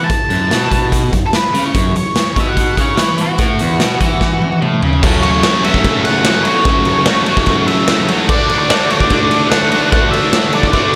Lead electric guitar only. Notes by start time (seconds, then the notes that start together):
0.04 A5
1.26 A4
1.34 B4
1.66 C#5
1.97 C#5
2.40 E5
2.49 F#5
2.81 C#5
3.21 F#4
5.23 C#5
5.31 C#5
5.64 E5
6.05 F#5
6.43 C#5
7.67 E5
8.29 D5
8.59 D5
8.91 D5
9.50 F#5
9.92 F#5
10.11 E5
10.55 D5